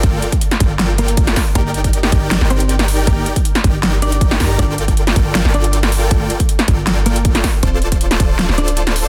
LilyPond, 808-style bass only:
\new Staff \with { instrumentName = "808-style bass" } { \clef bass \time 4/4 \key g \minor \tempo 4 = 158 g,,8 r4 g,,2 r8 | g,,4. g,,8. g,,4.~ g,,16 | g,,8 r4 g,,2 g,8 | g,,4. g,,8. g,,4.~ g,,16 |
g,,8 r4 g,,2 r8 | d,,4. d,,8. d,,4.~ d,,16 | }